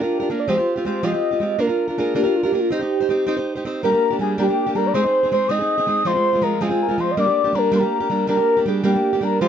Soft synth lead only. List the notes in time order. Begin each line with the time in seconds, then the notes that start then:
Already playing: G4
0.30 A#4
0.40 D5
0.48 C5
0.86 C5
1.04 D#5
1.60 A#4
1.98 G#4
2.17 G4
2.36 F4
2.44 G4
2.60 F4
2.71 G4
3.84 A#4
4.23 G#4
4.42 G4
4.77 A#4
4.86 D5
4.94 C5
5.33 C5
5.51 D#5
6.05 C5
6.43 A#4
6.61 G#4
6.83 A#4
7.00 C5
7.11 D#5
7.20 D5
7.58 A#4
7.77 A#4
8.30 A#4
8.68 G#4
8.86 G4
9.22 A#4
9.40 C5